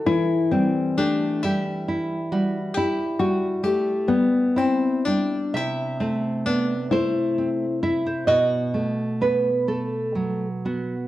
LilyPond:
<<
  \new Staff \with { instrumentName = "Nylon-string guitar" } { \time 12/8 \key e \minor \tempo 4. = 44 e'8 c'8 d'8 e'4. g'8 fis'8 g'8 b8 c'8 d'8 | e'8 c'8 d'8 e'4. fis'2. | }
  \new Staff \with { instrumentName = "Nylon-string guitar" } { \time 12/8 \key e \minor << { a'4 g'8 g'4 fis'8 e'2. | e''4. c''4 e''16 c''16 dis''4 b'8 a'4 fis'8 | } \\ { e8 g8 a8 g8 e'8 g4 g8 a8 g8 e'8 g8 | c8 a8 b8 a8 c'8 e'8 b,8 a8 b8 a8 fis8 b8 | } >> }
>>